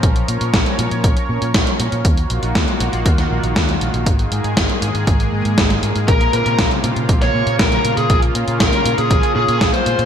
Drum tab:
HH |xxxxxxxxxx-xxxxx|xxxxxxxxxx-xxxxx|xxxxxxxxxx-xxxxx|xxxxxxxxxx-xxxxx|
SD |----o-------o---|----o----o--o---|----o-------oo--|----o----o--o---|
BD |o---o---o---o---|o---o---o---o---|o---o---o---o---|o---o---o---o---|

HH |xxxxxxxxxx-xxxxx|
SD |----o-------o---|
BD |o---o---o---o---|